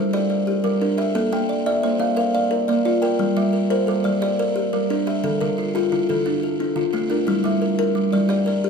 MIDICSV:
0, 0, Header, 1, 3, 480
1, 0, Start_track
1, 0, Tempo, 340136
1, 1636, Time_signature, 12, 3, 24, 8
1, 12272, End_track
2, 0, Start_track
2, 0, Title_t, "Kalimba"
2, 0, Program_c, 0, 108
2, 0, Note_on_c, 0, 55, 78
2, 0, Note_on_c, 0, 69, 61
2, 189, Note_on_c, 0, 74, 72
2, 403, Note_off_c, 0, 74, 0
2, 420, Note_on_c, 0, 74, 55
2, 430, Note_off_c, 0, 55, 0
2, 433, Note_off_c, 0, 69, 0
2, 667, Note_on_c, 0, 67, 69
2, 901, Note_on_c, 0, 70, 61
2, 1147, Note_off_c, 0, 74, 0
2, 1151, Note_off_c, 0, 67, 0
2, 1151, Note_on_c, 0, 62, 67
2, 1381, Note_on_c, 0, 76, 61
2, 1626, Note_on_c, 0, 58, 83
2, 1628, Note_off_c, 0, 70, 0
2, 1633, Note_off_c, 0, 62, 0
2, 1868, Note_off_c, 0, 76, 0
2, 1874, Note_on_c, 0, 79, 64
2, 2111, Note_off_c, 0, 58, 0
2, 2348, Note_on_c, 0, 74, 82
2, 2589, Note_on_c, 0, 72, 67
2, 2595, Note_off_c, 0, 79, 0
2, 2815, Note_on_c, 0, 58, 81
2, 2832, Note_off_c, 0, 74, 0
2, 3055, Note_on_c, 0, 77, 66
2, 3293, Note_off_c, 0, 77, 0
2, 3306, Note_off_c, 0, 58, 0
2, 3310, Note_on_c, 0, 77, 62
2, 3313, Note_off_c, 0, 72, 0
2, 3540, Note_on_c, 0, 70, 73
2, 3784, Note_on_c, 0, 74, 64
2, 4028, Note_off_c, 0, 70, 0
2, 4028, Note_on_c, 0, 65, 68
2, 4033, Note_off_c, 0, 77, 0
2, 4261, Note_on_c, 0, 79, 58
2, 4506, Note_on_c, 0, 55, 82
2, 4510, Note_off_c, 0, 74, 0
2, 4513, Note_off_c, 0, 65, 0
2, 4749, Note_off_c, 0, 79, 0
2, 4751, Note_on_c, 0, 76, 60
2, 4992, Note_off_c, 0, 55, 0
2, 5227, Note_on_c, 0, 70, 76
2, 5464, Note_on_c, 0, 69, 59
2, 5475, Note_off_c, 0, 76, 0
2, 5713, Note_off_c, 0, 70, 0
2, 5716, Note_on_c, 0, 55, 79
2, 5959, Note_on_c, 0, 74, 72
2, 6189, Note_off_c, 0, 74, 0
2, 6191, Note_off_c, 0, 69, 0
2, 6198, Note_off_c, 0, 55, 0
2, 6205, Note_on_c, 0, 74, 55
2, 6430, Note_on_c, 0, 67, 66
2, 6675, Note_on_c, 0, 70, 61
2, 6915, Note_off_c, 0, 67, 0
2, 6921, Note_on_c, 0, 62, 73
2, 6923, Note_off_c, 0, 74, 0
2, 7160, Note_on_c, 0, 76, 54
2, 7391, Note_on_c, 0, 50, 81
2, 7398, Note_off_c, 0, 70, 0
2, 7400, Note_off_c, 0, 62, 0
2, 7629, Note_on_c, 0, 70, 58
2, 7640, Note_off_c, 0, 76, 0
2, 7875, Note_off_c, 0, 50, 0
2, 8113, Note_on_c, 0, 65, 78
2, 8355, Note_off_c, 0, 70, 0
2, 8358, Note_on_c, 0, 64, 60
2, 8597, Note_off_c, 0, 65, 0
2, 8606, Note_on_c, 0, 50, 75
2, 9079, Note_off_c, 0, 64, 0
2, 9080, Note_on_c, 0, 69, 54
2, 9083, Note_off_c, 0, 50, 0
2, 9317, Note_on_c, 0, 62, 72
2, 9553, Note_on_c, 0, 65, 59
2, 9789, Note_on_c, 0, 57, 67
2, 9799, Note_off_c, 0, 62, 0
2, 9800, Note_off_c, 0, 69, 0
2, 10031, Note_on_c, 0, 70, 55
2, 10271, Note_on_c, 0, 55, 83
2, 10274, Note_off_c, 0, 57, 0
2, 10276, Note_off_c, 0, 65, 0
2, 10515, Note_off_c, 0, 70, 0
2, 10519, Note_on_c, 0, 76, 62
2, 10755, Note_off_c, 0, 55, 0
2, 10990, Note_on_c, 0, 70, 83
2, 11238, Note_off_c, 0, 76, 0
2, 11473, Note_off_c, 0, 70, 0
2, 11478, Note_on_c, 0, 55, 82
2, 11714, Note_on_c, 0, 74, 74
2, 11947, Note_off_c, 0, 74, 0
2, 11957, Note_off_c, 0, 55, 0
2, 11964, Note_on_c, 0, 74, 62
2, 12197, Note_on_c, 0, 67, 75
2, 12272, Note_off_c, 0, 67, 0
2, 12272, Note_off_c, 0, 74, 0
2, 12272, End_track
3, 0, Start_track
3, 0, Title_t, "Kalimba"
3, 0, Program_c, 1, 108
3, 0, Note_on_c, 1, 55, 66
3, 0, Note_on_c, 1, 72, 60
3, 192, Note_on_c, 1, 67, 75
3, 193, Note_off_c, 1, 72, 0
3, 196, Note_off_c, 1, 55, 0
3, 673, Note_off_c, 1, 67, 0
3, 904, Note_on_c, 1, 55, 76
3, 1151, Note_on_c, 1, 70, 63
3, 1386, Note_on_c, 1, 67, 77
3, 1389, Note_off_c, 1, 55, 0
3, 1624, Note_on_c, 1, 69, 66
3, 1870, Note_on_c, 1, 58, 82
3, 1871, Note_off_c, 1, 67, 0
3, 1873, Note_off_c, 1, 70, 0
3, 2106, Note_on_c, 1, 74, 59
3, 2110, Note_off_c, 1, 69, 0
3, 2347, Note_on_c, 1, 76, 64
3, 2353, Note_off_c, 1, 58, 0
3, 2589, Note_on_c, 1, 58, 72
3, 2822, Note_on_c, 1, 77, 57
3, 2831, Note_off_c, 1, 74, 0
3, 3063, Note_on_c, 1, 70, 74
3, 3071, Note_off_c, 1, 76, 0
3, 3072, Note_off_c, 1, 58, 0
3, 3310, Note_on_c, 1, 74, 64
3, 3549, Note_off_c, 1, 70, 0
3, 3549, Note_off_c, 1, 77, 0
3, 3796, Note_on_c, 1, 58, 78
3, 4010, Note_off_c, 1, 74, 0
3, 4026, Note_on_c, 1, 74, 66
3, 4269, Note_on_c, 1, 70, 82
3, 4276, Note_off_c, 1, 58, 0
3, 4749, Note_on_c, 1, 55, 82
3, 4752, Note_off_c, 1, 74, 0
3, 4753, Note_off_c, 1, 70, 0
3, 4982, Note_on_c, 1, 70, 58
3, 5233, Note_on_c, 1, 72, 67
3, 5234, Note_off_c, 1, 55, 0
3, 5479, Note_on_c, 1, 55, 73
3, 5704, Note_on_c, 1, 74, 59
3, 5710, Note_off_c, 1, 70, 0
3, 5954, Note_on_c, 1, 67, 78
3, 5956, Note_off_c, 1, 72, 0
3, 5959, Note_off_c, 1, 55, 0
3, 6201, Note_on_c, 1, 70, 70
3, 6432, Note_off_c, 1, 74, 0
3, 6437, Note_off_c, 1, 67, 0
3, 6677, Note_on_c, 1, 55, 73
3, 6901, Note_off_c, 1, 70, 0
3, 6918, Note_on_c, 1, 70, 64
3, 7155, Note_on_c, 1, 67, 68
3, 7158, Note_off_c, 1, 55, 0
3, 7394, Note_on_c, 1, 69, 64
3, 7638, Note_off_c, 1, 67, 0
3, 7638, Note_on_c, 1, 50, 80
3, 7639, Note_off_c, 1, 70, 0
3, 7876, Note_on_c, 1, 65, 61
3, 7877, Note_off_c, 1, 69, 0
3, 8119, Note_off_c, 1, 50, 0
3, 8124, Note_on_c, 1, 67, 68
3, 8356, Note_on_c, 1, 50, 68
3, 8598, Note_off_c, 1, 65, 0
3, 8598, Note_on_c, 1, 69, 62
3, 8831, Note_on_c, 1, 62, 71
3, 8838, Note_off_c, 1, 50, 0
3, 8842, Note_off_c, 1, 67, 0
3, 9316, Note_off_c, 1, 62, 0
3, 9319, Note_off_c, 1, 69, 0
3, 9537, Note_on_c, 1, 50, 74
3, 9781, Note_on_c, 1, 65, 64
3, 10016, Note_on_c, 1, 62, 76
3, 10029, Note_off_c, 1, 50, 0
3, 10258, Note_on_c, 1, 64, 63
3, 10497, Note_on_c, 1, 55, 77
3, 10508, Note_off_c, 1, 62, 0
3, 10510, Note_off_c, 1, 65, 0
3, 10748, Note_off_c, 1, 64, 0
3, 10748, Note_on_c, 1, 70, 62
3, 10988, Note_off_c, 1, 55, 0
3, 11220, Note_on_c, 1, 55, 70
3, 11466, Note_on_c, 1, 74, 57
3, 11472, Note_off_c, 1, 70, 0
3, 11697, Note_on_c, 1, 67, 79
3, 11708, Note_off_c, 1, 55, 0
3, 11938, Note_on_c, 1, 70, 62
3, 12186, Note_off_c, 1, 67, 0
3, 12190, Note_off_c, 1, 74, 0
3, 12272, Note_off_c, 1, 70, 0
3, 12272, End_track
0, 0, End_of_file